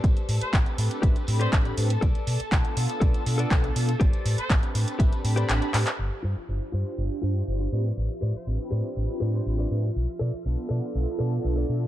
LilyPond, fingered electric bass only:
\new Staff \with { instrumentName = "Fingered electric bass" } { \clef bass \time 4/4 \key a \minor \tempo 4 = 121 a,,8 a,8 a,,8 a,8 a,,8 a,8 a,,8 a,8 | b,,8 b,8 b,,8 b,8 b,,8 b,8 b,,8 b,8 | a,,8 a,8 a,,8 a,8 a,,8 a,8 a,,8 a,8 | g,,8 g,8 g,,8 g,8 g,,8 g,8 g,,8 a,8 |
a,,8 a,8 a,,8 a,8 a,,8 a,8 a,,8 a,8 | b,,8 b,8 b,,8 b,8 b,,8 b,8 b,,8 b,8 | }